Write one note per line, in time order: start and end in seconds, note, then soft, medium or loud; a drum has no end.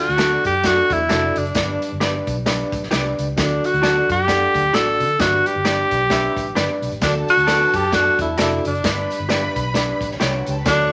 0.00 0.41 D3 medium
0.00 0.42 F#4 loud
0.09 0.36 D2 medium
0.09 closed hi-hat soft
0.17 0.52 D4 medium
0.17 0.31 F#4 medium
0.17 0.52 F#4 medium
0.17 0.31 A4 medium
0.17 0.53 A4 medium
0.17 0.31 D5 medium
0.17 0.53 D5 medium
0.17 snare loud
0.17 closed hi-hat medium
0.17 tambourine medium
0.44 0.80 F#2 medium
0.44 0.67 G4 medium
0.44 kick medium
0.44 closed hi-hat medium
0.44 tambourine medium
0.63 0.98 D4 medium
0.63 0.98 F#4 medium
0.63 0.94 F#4 loud
0.63 0.99 A4 medium
0.63 0.99 D5 medium
0.63 kick medium
0.63 snare loud
0.63 closed hi-hat medium
0.63 tambourine medium
0.90 1.05 E2 medium
0.90 1.40 E4 loud
0.90 kick medium
0.90 closed hi-hat medium
0.90 tambourine soft
1.09 1.30 F1 medium
1.09 1.44 D4 medium
1.09 1.22 F#4 medium
1.09 1.44 F#4 medium
1.09 1.23 A4 medium
1.09 1.44 A4 medium
1.09 1.23 D5 medium
1.09 1.44 D5 medium
1.09 snare medium
1.09 closed hi-hat medium
1.09 tambourine medium
1.36 1.51 F#1 medium
1.36 2.02 D4 medium
1.36 closed hi-hat medium
1.36 tambourine soft
1.45 closed hi-hat soft
1.55 1.75 G1 medium
1.55 2.24 G2 medium
1.55 1.89 D4 medium
1.55 1.89 G4 medium
1.55 1.90 B4 medium
1.55 1.90 D5 medium
1.55 kick loud
1.55 snare loud
1.55 closed hi-hat loud
1.55 tambourine medium
1.82 closed hi-hat medium
1.82 tambourine soft
1.92 2.19 G1 medium
2.00 2.35 D4 medium
2.00 2.13 G4 medium
2.00 2.35 G4 medium
2.00 2.14 B4 medium
2.00 2.35 B4 medium
2.00 2.14 D5 medium
2.00 2.36 D5 medium
2.00 snare medium
2.00 closed hi-hat medium
2.00 tambourine medium
2.27 2.62 B1 loud
2.27 kick medium
2.27 closed hi-hat medium
2.27 tambourine medium
2.46 2.80 D4 medium
2.46 2.80 G4 medium
2.46 2.80 B4 medium
2.46 2.81 D5 medium
2.46 kick medium
2.46 snare medium
2.46 closed hi-hat medium
2.46 tambourine medium
2.72 2.87 A1 medium
2.72 kick loud
2.72 closed hi-hat medium
2.72 tambourine medium
2.83 snare soft
2.91 3.12 C2 medium
2.91 3.25 D4 medium
2.91 3.04 G4 medium
2.91 3.26 G4 medium
2.91 3.05 B4 medium
2.91 3.26 B4 medium
2.91 3.05 D5 loud
2.91 3.26 D5 medium
2.91 snare loud
2.91 closed hi-hat medium
2.91 tambourine medium
3.19 3.33 C#2 medium
3.19 closed hi-hat medium
3.19 tambourine medium
3.36 3.58 D2 loud
3.36 4.05 D3 medium
3.36 3.71 D4 medium
3.36 3.67 D4 medium
3.36 3.71 F#4 medium
3.36 3.71 A4 medium
3.36 3.72 D5 medium
3.36 kick loud
3.36 snare loud
3.36 closed hi-hat medium
3.36 tambourine medium
3.64 4.10 F#4 loud
3.64 closed hi-hat medium
3.64 tambourine soft
3.74 4.01 D2 medium
3.74 closed hi-hat soft
3.82 4.17 D4 medium
3.82 3.95 F#4 medium
3.82 4.17 F#4 medium
3.82 3.96 A4 medium
3.82 4.17 A4 medium
3.82 3.96 D5 medium
3.82 4.17 D5 medium
3.82 snare loud
3.82 closed hi-hat medium
3.82 tambourine medium
4.10 4.44 F#2 medium
4.10 4.76 G4 loud
4.10 kick medium
4.10 closed hi-hat medium
4.10 tambourine soft
4.28 4.62 D4 medium
4.28 4.63 A4 medium
4.28 4.63 D5 medium
4.28 4.62 F#5 medium
4.28 kick medium
4.28 snare medium
4.28 closed hi-hat medium
4.28 tambourine medium
4.54 4.69 D2 medium
4.54 kick medium
4.54 closed hi-hat medium
4.54 tambourine soft
4.73 5.02 A1 medium
4.73 5.08 D4 medium
4.73 4.87 F#4 medium
4.73 5.08 F#4 medium
4.73 4.87 A4 medium
4.73 5.22 A4 loud
4.73 5.08 A4 medium
4.73 4.87 D5 medium
4.73 5.09 D5 medium
4.73 snare loud
4.73 closed hi-hat medium
4.73 tambourine medium
5.00 5.15 D3 medium
5.00 closed hi-hat medium
5.00 tambourine soft
5.19 5.40 G1 loud
5.19 5.88 G2 medium
5.19 5.53 D4 medium
5.19 5.48 F#4 medium
5.19 5.54 G4 medium
5.19 5.54 B4 medium
5.19 5.54 D5 medium
5.19 kick loud
5.19 snare loud
5.19 closed hi-hat medium
5.19 tambourine medium
5.46 6.83 G4 loud
5.46 closed hi-hat medium
5.46 tambourine soft
5.56 5.83 G1 medium
5.65 5.99 D4 medium
5.65 5.78 G4 medium
5.65 5.99 G4 medium
5.65 5.78 B4 medium
5.65 5.99 B4 medium
5.65 5.78 D5 medium
5.65 6.00 D5 medium
5.65 snare loud
5.65 closed hi-hat medium
5.65 tambourine medium
5.91 6.26 B1 medium
5.91 kick medium
5.91 closed hi-hat medium
5.91 tambourine medium
6.10 6.44 D4 medium
6.10 6.45 G4 medium
6.10 6.45 B4 medium
6.10 6.45 E5 loud
6.10 kick medium
6.10 snare medium
6.10 closed hi-hat medium
6.10 tambourine medium
6.36 6.51 A1 medium
6.36 kick medium
6.36 closed hi-hat medium
6.36 tambourine soft
6.55 6.66 G1 medium
6.55 6.90 D4 medium
6.55 6.69 G4 medium
6.55 6.90 G4 medium
6.55 6.69 B4 loud
6.55 6.90 B4 medium
6.55 6.69 D5 medium
6.55 6.91 D5 medium
6.55 snare loud
6.55 closed hi-hat medium
6.55 tambourine loud
6.82 6.89 B1 medium
6.82 closed hi-hat medium
6.82 tambourine soft
6.92 6.99 A1 medium
6.92 closed hi-hat soft
7.01 7.22 D2 medium
7.01 7.70 D3 medium
7.01 7.35 D4 medium
7.01 7.15 D4 medium
7.01 7.36 F#4 medium
7.01 8.62 A4 loud
7.01 7.36 A4 medium
7.01 7.36 D5 medium
7.01 8.62 A5 loud
7.01 kick loud
7.01 snare loud
7.01 closed hi-hat medium
7.01 tambourine medium
7.28 7.77 F#4 loud
7.28 closed hi-hat medium
7.28 tambourine soft
7.37 7.65 D2 medium
7.37 closed hi-hat soft
7.47 7.81 D4 medium
7.47 7.60 F#4 medium
7.47 7.81 F#4 medium
7.47 7.60 A4 medium
7.47 7.81 A4 medium
7.47 7.82 B4 medium
7.47 7.60 D5 medium
7.47 snare loud
7.47 closed hi-hat medium
7.47 tambourine medium
7.73 8.08 F#2 medium
7.73 7.96 G4 loud
7.73 kick medium
7.73 closed hi-hat medium
7.73 tambourine medium
7.92 8.27 D4 medium
7.92 8.27 F#4 medium
7.92 8.20 F#4 loud
7.92 8.27 A4 medium
7.92 8.27 D5 medium
7.92 kick medium
7.92 snare medium
7.92 closed hi-hat medium
7.92 tambourine medium
8.19 8.34 E2 medium
8.19 8.38 E4 medium
8.19 kick medium
8.19 closed hi-hat medium
8.19 tambourine soft
8.38 8.59 F1 medium
8.38 8.72 D4 medium
8.38 8.64 E4 medium
8.38 8.51 F#4 medium
8.38 8.72 F#4 medium
8.38 8.51 A4 medium
8.38 8.73 A4 medium
8.38 8.51 D5 loud
8.38 8.73 D5 medium
8.38 snare loud
8.38 closed hi-hat medium
8.38 tambourine medium
8.65 8.80 F#1 medium
8.65 9.27 D4 medium
8.65 closed hi-hat medium
8.65 tambourine soft
8.75 closed hi-hat soft
8.84 9.04 G1 medium
8.84 9.52 G2 medium
8.84 9.18 D4 medium
8.84 9.18 G4 medium
8.84 10.08 B4 loud
8.84 9.18 B4 medium
8.84 9.19 D5 medium
8.84 10.08 B5 loud
8.84 kick loud
8.84 snare loud
8.84 closed hi-hat medium
8.84 tambourine medium
9.10 closed hi-hat medium
9.10 tambourine soft
9.20 9.47 G1 medium
9.29 9.63 D4 medium
9.29 9.42 G4 medium
9.29 9.63 G4 medium
9.29 9.42 B4 medium
9.29 9.63 B4 medium
9.29 9.64 D5 medium
9.29 9.43 D5 medium
9.29 snare loud
9.29 closed hi-hat medium
9.29 tambourine medium
9.56 9.91 B1 loud
9.56 kick medium
9.56 closed hi-hat medium
9.56 tambourine medium
9.74 10.08 D4 medium
9.74 10.09 G4 medium
9.74 10.09 B4 medium
9.74 10.09 D5 loud
9.74 kick medium
9.74 snare medium
9.74 closed hi-hat medium
9.74 tambourine medium
10.01 10.15 A1 medium
10.01 kick medium
10.01 closed hi-hat medium
10.01 tambourine medium
10.11 10.20 C#4 medium
10.11 10.20 C#5 medium
10.11 snare soft
10.20 10.41 C2 medium
10.20 10.29 D4 medium
10.20 10.54 D4 medium
10.20 10.33 G4 medium
10.20 10.54 G4 medium
10.20 10.33 B4 medium
10.20 10.55 B4 medium
10.20 10.55 C#5 medium
10.20 10.29 D5 medium
10.20 10.33 D5 medium
10.20 snare loud
10.20 closed hi-hat medium
10.20 tambourine medium
10.29 10.35 E4 medium
10.29 10.35 E5 medium
10.36 10.47 F#4 medium
10.36 10.47 F#5 medium
10.46 10.62 C#2 medium
10.46 10.51 G4 medium
10.46 10.51 G5 medium
10.46 closed hi-hat medium
10.46 tambourine soft
10.51 10.60 A4 medium
10.51 10.60 A5 medium
10.60 10.66 B4 medium
10.60 10.66 B5 medium
10.65 10.86 D2 loud
10.65 10.92 D3 medium
10.65 10.92 D4 medium
10.65 10.92 D4 loud
10.65 10.92 F#4 medium
10.65 10.92 A4 medium
10.65 10.92 C#5 loud
10.65 10.92 D5 medium
10.65 10.92 C#6 loud
10.65 kick loud
10.65 snare loud
10.65 closed hi-hat medium
10.65 tambourine medium